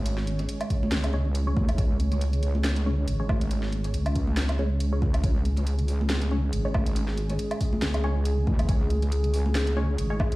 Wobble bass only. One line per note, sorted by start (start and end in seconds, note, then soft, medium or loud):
0.00 0.47 G#1 medium
0.92 1.55 C#2 medium
1.57 1.77 D#2 medium
1.78 3.06 C#2 loud
3.08 3.92 G#1 medium
3.94 5.22 C#2 medium
5.24 6.51 C#2 loud
6.53 7.38 G#1 medium
7.82 8.46 C#2 medium
8.47 8.67 D#2 medium
8.69 9.97 C#2 medium
9.98 10.36 G#1 medium